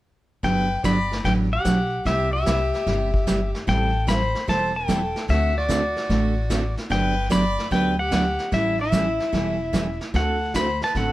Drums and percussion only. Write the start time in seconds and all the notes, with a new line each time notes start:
0.43 brush sweep, kick, snare
0.84 kick, snare, hi-hat pedal
1.12 snare
1.24 brush sweep, kick, snare
1.65 kick, snare, hi-hat pedal
2.05 brush sweep, kick, snare
2.46 kick, snare, hi-hat pedal
2.74 snare
2.87 brush sweep, kick, snare
3.14 kick
3.27 kick, snare, hi-hat pedal
3.54 snare
3.67 brush sweep, kick, snare
4.08 kick, snare, hi-hat pedal
4.35 snare
4.48 brush sweep, kick, snare
4.89 kick, snare, hi-hat pedal
5.16 snare
5.29 brush sweep, kick, snare
5.69 kick, snare, hi-hat pedal
5.96 snare
6.10 brush sweep, kick, snare
6.50 kick, snare, hi-hat pedal
6.77 snare
6.90 brush sweep, kick, snare
7.31 kick, snare, hi-hat pedal
7.58 snare
7.71 brush sweep, kick, snare
8.12 kick, snare, hi-hat pedal
8.39 snare
8.52 brush sweep, kick, snare
8.93 kick, snare, hi-hat pedal
9.20 snare
9.33 brush sweep, kick, snare
9.74 kick, snare, hi-hat pedal
10.01 snare
10.14 brush sweep, kick, snare
10.54 kick, snare, hi-hat pedal
10.81 snare
10.95 brush sweep, kick, snare